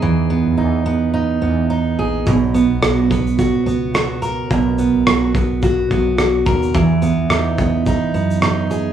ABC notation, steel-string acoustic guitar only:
X:1
M:4/4
L:1/8
Q:"Swing 16ths" 1/4=107
K:B
V:1 name="Steel-string acoustic guitar"
[E,B,DG] B, D B, D B, D G | B,, B, F B, F B, F A | B,, B, F B, F B, F A | E, B, D B, D B, D G |]